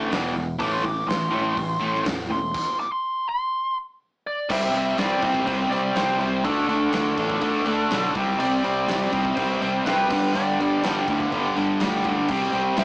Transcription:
0.10 fingered electric bass E1, overdriven electric guitar E2 B2 E3, snare, open hi-hat
0.34 overdriven electric guitar E2 B2, fingered electric bass E2
0.58 fingered electric bass A1, overdriven electric guitar A2 E3 A3, lead electric guitar D6, kick, open hi-hat
0.73 lead electric guitar C6
0.83 fingered electric bass A1, overdriven electric guitar A2 E3, lead electric guitar D6, kick
1.07 fingered electric bass A1, overdriven electric guitar A2 E3, lead electric guitar C6, snare, open hi-hat
1.30 fingered electric bass A1, overdriven electric guitar A2 E3 A3
1.55 fingered electric bass A1, overdriven electric guitar A2 E3, kick, open hi-hat
1.79 fingered electric bass A1, overdriven electric guitar A2 E3 A3
1.95 snare
2.03 fingered electric bass E2, overdriven electric guitar A2 E3, snare, open hi-hat
2.29 fingered electric bass E1, overdriven electric guitar A2 E3, lead electric guitar C6
2.54 kick, crash
2.80 lead electric guitar D6
2.92 lead electric guitar C6
3.29 lead electric guitar C6
4.27 lead electric guitar D5
4.49 fingered electric bass C2, overdriven electric guitar C3 G3 C4, lead electric guitar E5, kick, crash
4.73 fingered electric bass C2, overdriven electric guitar C3 G3 C4, crash
4.78 lead electric guitar E5
4.97 fingered electric bass C2, overdriven electric guitar C3 G3 C4, lead electric guitar D5, snare, crash
5.22 fingered electric bass C2, overdriven electric guitar C3 G3 C4, lead electric guitar C5, kick, crash
5.35 kick
5.46 fingered electric bass C2, overdriven electric guitar C3 G3 C4, lead electric guitar C5, kick, crash
5.70 fingered electric bass C2, overdriven electric guitar C3 G3 C4, lead electric guitar D5, crash
5.96 fingered electric bass C2, overdriven electric guitar C3 G3 C4, lead electric guitar C5, snare, crash
6.20 overdriven electric guitar C3 G3 C4, lead electric guitar C5, crash
6.44 fingered electric bass D2, overdriven electric guitar D3 A3 D4, lead electric guitar A4, kick, crash
6.68 fingered electric bass D2, overdriven electric guitar D3 A3 D4, crash
6.92 fingered electric bass D2, overdriven electric guitar D3 A3 D4, snare, crash
7.17 fingered electric bass A1, overdriven electric guitar D3 A3 D4, kick, crash
7.30 kick
7.41 fingered electric bass D2, overdriven electric guitar D3 A3 D4, kick, crash
7.66 fingered electric bass D2, overdriven electric guitar D3 A3 D4, crash
7.91 fingered electric bass B1, overdriven electric guitar D3 A3 D4, snare, crash
8.15 fingered electric bass C2, overdriven electric guitar C3 G3 C4, kick, crash
8.39 fingered electric bass C2, overdriven electric guitar C3 G3 C4, lead electric guitar D5, crash
8.64 fingered electric bass C2, overdriven electric guitar C3 G3 C4, crash
8.88 fingered electric bass C2, overdriven electric guitar C3 G3 C4, snare, crash
9.12 fingered electric bass C2, overdriven electric guitar C3 G3 C4, kick, crash
9.25 kick
9.36 fingered electric bass C2, overdriven electric guitar C3 G3 C4, lead electric guitar C5, kick, crash
9.61 fingered electric bass C2, overdriven electric guitar C3 G3 C4, crash
9.85 fingered electric bass C2, overdriven electric guitar C3 G3 C4, lead electric guitar B4, snare, crash
10.10 fingered electric bass G1, overdriven electric guitar G2 D3 G3, kick, crash
10.34 fingered electric bass G1, overdriven electric guitar G2 D3 G3, lead electric guitar D5, crash
10.59 fingered electric bass G1, overdriven electric guitar G2 D3 G3, crash
10.83 fingered electric bass G1, overdriven electric guitar G2 D3 G3, snare, crash
11.08 fingered electric bass D2, overdriven electric guitar G2 D3 G3, kick, crash
11.20 kick
11.32 fingered electric bass G1, overdriven electric guitar G2 D3 G3, kick, crash
11.56 fingered electric bass G1, overdriven electric guitar G2 D3 G3, crash
11.80 fingered electric bass D2, overdriven electric guitar G2 D3 G3, snare, crash
12.04 overdriven electric guitar G2 D3 G3, kick, crash
12.28 fingered electric bass C2, overdriven electric guitar C3 G3 C4, kick, crash
12.53 fingered electric bass C2, overdriven electric guitar C3 G3 C4, crash
12.77 fingered electric bass C2, overdriven electric guitar C3 G3 C4, lead electric guitar E5, snare, crash

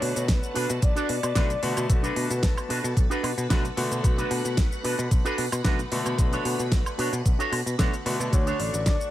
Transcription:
Already playing: grand piano D3 A3 B3 F#4, clean electric guitar D4 F#4 A4 D5, string machine B4 F#5 A5, soft synth lead C#5
0.02 picked electric bass B2, open hi-hat
0.16 picked electric bass B2, closed hi-hat, shaker
0.28 picked electric bass B1, soft synth lead B4, kick, snare, closed hi-hat, shaker
0.42 muted clean electric guitar stroke, shaker
0.54 picked electric bass B2, clean electric guitar D4 F#4 A4 B4, open hi-hat
0.70 picked electric bass B2, closed hi-hat, shaker
0.81 picked electric bass B1, soft synth lead D5, muted clean electric guitar stroke, kick, closed hi-hat, shaker
0.95 clean electric guitar D4 F#4 A4 D5, closed hi-hat, shaker
1.09 picked electric bass B2, open hi-hat
1.23 picked electric bass B2, soft synth lead D5, closed hi-hat, high woodblock, shaker
1.35 picked electric bass B1, grand piano D3 A3 B3 F#4, clean electric guitar D4 F#4 A4 B4, kick, snare, closed hi-hat, shaker
1.50 closed hi-hat, shaker
1.62 picked electric bass B2, grand piano D3 A3 B3 F#4, soft synth lead B4, muted clean electric guitar stroke, open hi-hat
1.77 picked electric bass B2, closed hi-hat, high woodblock, shaker
1.88 picked electric bass B1, grand piano D3 A3 B3 F#4, soft synth lead A4, muted clean electric guitar stroke, kick, closed hi-hat, shaker
2.03 clean electric guitar D4 F#4 A4 B4, closed hi-hat, shaker
2.16 picked electric bass B2, soft synth lead B4, open hi-hat
2.30 picked electric bass B2, closed hi-hat, shaker
2.43 picked electric bass B1, kick, snare, closed hi-hat, shaker
2.56 muted clean electric guitar stroke, high woodblock, shaker
2.69 picked electric bass B2, clean electric guitar D4 F#4 A4 B4, soft synth lead A4, open hi-hat
2.84 picked electric bass B2, closed hi-hat, shaker
2.96 picked electric bass B1, muted clean electric guitar stroke, kick, closed hi-hat, shaker
3.10 clean electric guitar D4 F#4 A4 B4, closed hi-hat, shaker
3.23 picked electric bass B2, open hi-hat, high woodblock
3.38 picked electric bass B2, closed hi-hat, shaker
3.49 picked electric bass B1, grand piano D3 A3 B3 F#4, clean electric guitar D4 F#4 A4 B4, kick, snare, closed hi-hat, shaker
3.65 closed hi-hat, shaker
3.76 picked electric bass B2, grand piano D3 A3 B3 F#4, muted clean electric guitar stroke, open hi-hat
3.92 picked electric bass B2, closed hi-hat, shaker
4.03 picked electric bass B1, grand piano D3 A3 B3 F#4, string machine B5, muted clean electric guitar stroke, kick, closed hi-hat, shaker
4.17 clean electric guitar D4 F#4 A4 B4, closed hi-hat, shaker
4.31 picked electric bass B2, open hi-hat
4.45 picked electric bass B2, closed hi-hat, shaker
4.57 picked electric bass B1, kick, snare, closed hi-hat, shaker
4.71 muted clean electric guitar stroke, shaker
4.83 picked electric bass B2, clean electric guitar D4 F#4 A4 B4, open hi-hat
4.99 picked electric bass B2, closed hi-hat, shaker
5.10 picked electric bass B1, muted clean electric guitar stroke, kick, closed hi-hat, shaker
5.24 clean electric guitar D4 F#4 A4 B4, closed hi-hat, shaker
5.38 picked electric bass B2, open hi-hat
5.52 picked electric bass B2, closed hi-hat, high woodblock, shaker
5.64 picked electric bass B1, grand piano D3 A3 B3 F#4, clean electric guitar D4 F#4 A4 B4, kick, snare, closed hi-hat, shaker
5.79 closed hi-hat, shaker
5.91 picked electric bass B2, grand piano D3 A3 B3 F#4, muted clean electric guitar stroke, open hi-hat
6.06 picked electric bass B2, closed hi-hat, high woodblock, shaker
6.18 picked electric bass B1, grand piano D3 A3 B3 F#4, muted clean electric guitar stroke, kick, closed hi-hat, shaker
6.32 clean electric guitar D4 F#4 A4 C#5, closed hi-hat, shaker
6.45 picked electric bass B2, open hi-hat
6.59 picked electric bass B2, closed hi-hat, shaker
6.72 picked electric bass B1, kick, snare, closed hi-hat, shaker
6.86 muted clean electric guitar stroke, high woodblock, shaker
6.98 picked electric bass B2, clean electric guitar D4 F#4 A4 C#5, open hi-hat
7.13 picked electric bass B2, closed hi-hat, shaker
7.25 picked electric bass B1, muted clean electric guitar stroke, kick, closed hi-hat, shaker
7.39 clean electric guitar D4 F#4 A4 C#5, closed hi-hat, shaker
7.52 picked electric bass B2, open hi-hat, high woodblock
7.66 picked electric bass B2, closed hi-hat, shaker
7.78 picked electric bass B1, grand piano D3 A3 B3 F#4, clean electric guitar D4 F#4 A4 C#5, kick, snare, closed hi-hat, shaker
7.94 closed hi-hat, shaker
8.05 picked electric bass B2, grand piano D3 A3 B3 F#4, muted clean electric guitar stroke, open hi-hat
8.20 picked electric bass B2, closed hi-hat, shaker
8.31 picked electric bass D2, grand piano D3 A3 F#4 D5, string machine A4 F#5 C#6, soft synth lead C#5, muted clean electric guitar stroke, kick, closed hi-hat, shaker
8.46 clean electric guitar D4 F#4 A4 C#5, closed hi-hat, shaker
8.60 picked electric bass A1, soft synth lead D5, open hi-hat
8.74 picked electric bass A1, closed hi-hat, shaker
8.86 picked electric bass D2, kick, snare, closed hi-hat, shaker
8.99 muted clean electric guitar stroke, shaker

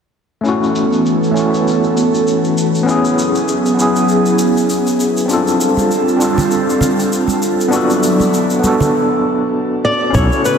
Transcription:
0.41 analog synth pad E3 B3 C#4 A4, tine electric piano A3 C#4, shaker
0.46 tine electric piano E4 F#4
0.63 shaker
0.75 shaker
0.93 shaker
1.06 shaker
1.23 shaker
1.32 tine electric piano A3 C#4
1.36 tine electric piano E4 F#4, shaker
1.54 shaker
1.67 shaker
1.84 shaker
1.97 shaker
2.14 shaker
2.27 shaker
2.44 shaker
2.58 shaker
2.75 shaker
2.83 tine electric piano B3 C#4
2.87 analog synth pad F#3 B3 E4 G#4, tine electric piano E4 G#4, shaker
3.05 shaker
3.19 shaker
3.35 shaker
3.48 shaker
3.66 shaker
3.74 tine electric piano B3 C#4
3.79 tine electric piano E4 G#4, shaker
3.96 shaker
4.08 shaker
4.26 shaker
4.38 shaker
4.57 shaker
4.69 shaker
4.87 shaker
5.00 shaker
5.17 shaker
5.26 analog synth pad G3, tine electric piano C4 D4, shaker
5.30 analog synth pad C4 F4 A4, tine electric piano F4 A4
5.47 shaker
5.61 shaker
5.77 high conga, shaker
5.91 shaker
6.08 shaker
6.17 tine electric piano C4 D4
6.21 tine electric piano F4 A4, shaker
6.38 low conga, shaker
6.51 shaker
6.69 shaker
6.81 high conga, low conga, shaker
6.99 shaker
7.12 shaker
7.28 high conga, shaker
7.42 shaker
7.61 shaker
7.68 tine electric piano B3 D4
7.72 analog synth pad F#3 D4 E4, tine electric piano F#4 A4, shaker
7.90 shaker
8.03 shaker
8.20 high conga, shaker
8.34 shaker
8.50 shaker
8.59 tine electric piano B3 D4
8.64 tine electric piano F#4 A4, high conga, shaker
8.80 low conga, shaker
9.85 nylon-string guitar D5
10.10 tine electric piano C#4 E4
10.14 fretless electric bass B1, analog synth pad C#3 A3 B3 E4, tine electric piano F#4 A4, nylon-string guitar C#5, kick, shaker
10.32 shaker
10.45 nylon-string guitar B4, shaker

